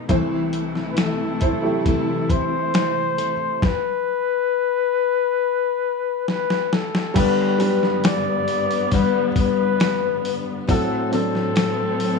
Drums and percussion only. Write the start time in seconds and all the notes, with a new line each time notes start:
0.09 kick, closed hi-hat
0.53 closed hi-hat
0.75 snare
0.97 snare, closed hi-hat
1.41 kick, closed hi-hat
1.86 kick, closed hi-hat
2.30 kick, closed hi-hat
2.74 snare, closed hi-hat
3.18 closed hi-hat
3.62 kick, snare
6.28 snare
6.50 snare
6.73 snare
6.95 snare
7.16 kick, open hi-hat, crash
7.60 open hi-hat
7.83 snare
8.04 snare, open hi-hat
8.48 open hi-hat
8.71 open hi-hat
8.92 kick, open hi-hat
9.36 kick, open hi-hat
9.80 snare, open hi-hat
10.25 open hi-hat
10.69 kick, open hi-hat
11.13 open hi-hat
11.35 snare
11.56 snare, open hi-hat
12.00 open hi-hat